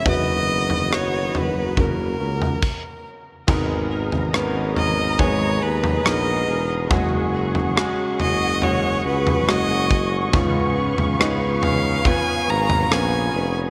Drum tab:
CC |------------x---|x---------------|----------------|----------------|
SD |----r-----------|----r-------r---|----r-------r---|----r-------r---|
FT |o--o--o-o--o----|o--o--o-o--o----|o--o--o-o--o----|o--o--o-o--o----|
BD |o-------o---o---|o-------o-------|o-------------o-|o-------o-------|